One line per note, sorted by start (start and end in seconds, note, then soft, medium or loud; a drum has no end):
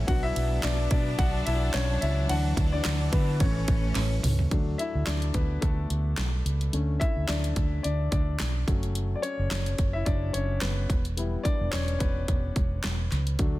0.07 0.31 B1 medium
0.07 2.25 F#3 medium
0.07 3.37 F#3 medium
0.07 2.26 B3 medium
0.07 2.28 B3 medium
0.07 3.37 D4 loud
0.07 0.63 D4 medium
0.07 0.23 F#4 medium
0.07 0.24 F#5 loud
0.07 kick loud
0.07 ride medium
0.23 0.61 E4 medium
0.23 0.64 E5 loud
0.36 0.59 B1 medium
0.36 ride medium
0.63 0.86 B1 loud
0.63 0.89 D4 medium
0.63 0.89 D5 medium
0.63 snare loud
0.63 clap loud
0.63 clap medium
0.63 ride medium
0.91 1.14 B2 loud
0.91 1.17 D4 medium
0.91 1.19 D5 medium
0.91 kick medium
0.91 ride medium
1.18 1.41 B1 loud
1.18 1.45 F#4 medium
1.18 1.47 F#5 loud
1.18 kick loud
1.18 ride medium
1.46 1.69 B1 medium
1.46 1.72 E4 medium
1.46 1.74 E5 medium
1.46 ride medium
1.74 1.97 B1 loud
1.74 2.00 C#4 medium
1.74 2.00 C#5 loud
1.74 snare loud
1.74 clap loud
1.74 clap medium
1.74 ride medium
2.01 2.25 C#2 loud
2.01 2.28 E4 medium
2.01 2.30 E5 medium
2.01 ride medium
2.29 2.53 D2 loud
2.29 3.08 E3 medium
2.29 4.49 E3 medium
2.29 3.09 F#3 medium
2.29 2.72 D4 medium
2.29 2.70 F#4 medium
2.29 2.74 F#5 loud
2.29 ride medium
2.57 2.80 D2 loud
2.57 kick medium
2.57 ride medium
2.72 3.10 D4 medium
2.72 3.14 D5 loud
2.85 3.08 D2 medium
2.85 snare loud
2.85 clap loud
2.85 clap medium
2.85 ride medium
3.12 3.42 D3 loud
3.12 3.39 B3 medium
3.12 3.41 B4 medium
3.12 kick medium
3.12 ride medium
3.40 3.63 A1 loud
3.40 4.47 E3 medium
3.40 4.50 A3 medium
3.40 4.48 A3 soft
3.40 4.50 C#4 medium
3.40 4.20 C#4 medium
3.40 4.20 C#5 medium
3.40 kick loud
3.40 ride medium
3.68 3.91 A1 medium
3.68 kick loud
3.68 ride medium
3.95 4.19 A1 loud
3.95 snare medium
3.95 clap medium
3.95 ride medium
4.23 4.47 C#2 medium
4.23 mid tom medium
4.23 open hi-hat medium
4.23 ride medium
4.39 floor tom medium
4.51 4.74 D2 medium
4.51 6.69 F#3 medium
4.51 5.62 A3 soft
4.51 5.06 D4 medium
4.51 kick medium
4.51 closed hi-hat medium
4.78 5.06 E4 medium
4.78 5.07 E5 medium
4.78 closed hi-hat medium
4.95 5.05 D2 medium
5.06 5.30 D2 medium
5.06 5.33 D4 medium
5.06 5.35 D5 medium
5.06 snare loud
5.06 clap medium
5.06 closed hi-hat medium
5.22 closed hi-hat medium
5.34 5.57 D2 medium
5.34 5.42 B3 medium
5.34 5.40 B4 medium
5.34 kick medium
5.34 closed hi-hat medium
5.61 5.85 D2 medium
5.61 6.42 A3 medium
5.61 6.41 A4 medium
5.61 kick medium
5.61 closed hi-hat medium
5.90 6.13 D2 medium
5.90 closed hi-hat medium
6.17 6.41 B1 medium
6.17 snare loud
6.17 clap medium
6.17 closed hi-hat medium
6.45 6.68 C#2 medium
6.45 closed hi-hat medium
6.61 closed hi-hat soft
6.73 6.96 D2 medium
6.73 7.52 D3 medium
6.73 7.53 A3 medium
6.73 7.53 C#4 medium
6.73 closed hi-hat medium
7.00 7.28 E4 medium
7.00 7.29 E5 medium
7.00 kick medium
7.00 closed hi-hat medium
7.16 7.27 D2 medium
7.27 7.52 D2 medium
7.27 7.81 D4 medium
7.27 7.82 D5 medium
7.27 snare loud
7.27 clap medium
7.27 closed hi-hat medium
7.44 closed hi-hat medium
7.56 7.79 D2 loud
7.56 kick medium
7.56 closed hi-hat medium
7.83 8.07 D2 medium
7.83 8.11 D4 medium
7.83 8.10 D5 medium
7.83 closed hi-hat medium
8.11 8.35 D2 medium
8.11 8.64 D4 medium
8.11 8.63 D5 medium
8.11 kick medium
8.11 closed hi-hat medium
8.40 8.63 B1 medium
8.40 snare loud
8.40 clap medium
8.40 closed hi-hat medium
8.67 9.13 F#1 medium
8.67 10.85 F#3 soft
8.67 10.86 A3 soft
8.67 9.22 C#4 medium
8.67 kick medium
8.67 closed hi-hat medium
8.83 closed hi-hat soft
8.95 closed hi-hat medium
9.15 9.22 D5 medium
9.22 9.91 C#4 medium
9.22 9.96 C#5 loud
9.22 closed hi-hat medium
9.39 9.49 F#1 medium
9.51 snare loud
9.51 clap medium
9.51 closed hi-hat medium
9.66 closed hi-hat soft
9.78 10.02 F#1 medium
9.78 kick medium
9.78 closed hi-hat medium
9.93 10.06 E4 medium
9.93 10.05 E5 medium
10.05 10.29 F#1 medium
10.05 10.33 D4 medium
10.05 10.34 D5 medium
10.05 kick medium
10.05 closed hi-hat medium
10.33 10.57 F#1 medium
10.33 10.61 C#4 medium
10.33 10.62 C#5 medium
10.33 closed hi-hat medium
10.61 10.85 F#1 medium
10.61 11.03 B3 medium
10.61 11.02 B4 medium
10.61 snare loud
10.61 clap medium
10.61 closed hi-hat medium
10.90 11.35 E1 medium
10.90 kick medium
10.90 closed hi-hat medium
11.05 closed hi-hat soft
11.17 13.35 G3 medium
11.17 12.00 B3 soft
11.17 13.35 E4 medium
11.17 closed hi-hat medium
11.43 11.71 D4 medium
11.43 11.73 D5 loud
11.43 kick medium
11.43 closed hi-hat medium
11.61 11.71 E1 medium
11.71 11.96 E1 medium
11.71 11.99 C#4 medium
11.71 12.01 C#5 medium
11.71 snare loud
11.71 clap medium
11.71 closed hi-hat medium
11.88 closed hi-hat soft
11.99 12.23 E1 medium
11.99 13.08 B3 medium
11.99 13.06 B4 medium
11.99 kick medium
11.99 closed hi-hat medium
12.28 12.51 E1 medium
12.28 kick medium
12.28 closed hi-hat medium
12.56 12.79 E1 medium
12.56 kick medium
12.56 closed hi-hat medium
12.84 13.07 E1 medium
12.84 snare loud
12.84 clap medium
12.84 closed hi-hat medium
13.12 13.34 C#2 medium
13.12 snare soft
13.12 closed hi-hat medium
13.27 closed hi-hat soft
13.39 13.59 D2 medium
13.39 13.59 F#3 soft
13.39 13.59 A3 soft
13.39 13.59 D4 medium
13.39 kick medium
13.39 closed hi-hat medium